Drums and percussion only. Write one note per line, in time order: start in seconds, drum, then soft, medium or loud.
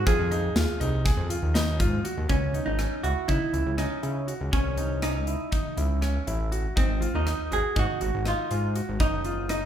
0.07 kick loud
0.07 closed hi-hat medium
0.32 closed hi-hat soft
0.56 snare loud
0.56 closed hi-hat medium
0.81 closed hi-hat medium
1.06 kick medium
1.06 snare soft
1.06 closed hi-hat medium
1.30 closed hi-hat medium
1.55 snare medium
1.55 closed hi-hat medium
1.80 kick medium
1.80 closed hi-hat medium
2.05 closed hi-hat medium
2.29 kick medium
2.29 closed hi-hat medium
2.54 closed hi-hat soft
2.79 cross-stick medium
2.79 closed hi-hat medium
3.04 closed hi-hat soft
3.29 kick medium
3.29 closed hi-hat medium
3.54 closed hi-hat soft
3.78 cross-stick medium
3.78 closed hi-hat medium
4.03 closed hi-hat soft
4.28 closed hi-hat soft
4.53 kick medium
4.53 closed hi-hat medium
4.77 closed hi-hat soft
5.02 cross-stick medium
5.02 closed hi-hat medium
5.27 closed hi-hat soft
5.52 kick medium
5.52 closed hi-hat medium
5.78 closed hi-hat medium
6.02 cross-stick medium
6.02 closed hi-hat medium
6.27 closed hi-hat soft
6.52 closed hi-hat soft
6.77 kick medium
6.77 closed hi-hat medium
7.02 closed hi-hat soft
7.27 cross-stick medium
7.27 closed hi-hat medium
7.52 closed hi-hat soft
7.76 kick medium
7.76 closed hi-hat medium
8.01 closed hi-hat soft
8.26 cross-stick medium
8.26 closed hi-hat medium
8.51 closed hi-hat soft
8.76 closed hi-hat medium
9.00 kick medium
9.00 closed hi-hat medium
9.25 closed hi-hat soft
9.49 cross-stick medium
9.49 closed hi-hat medium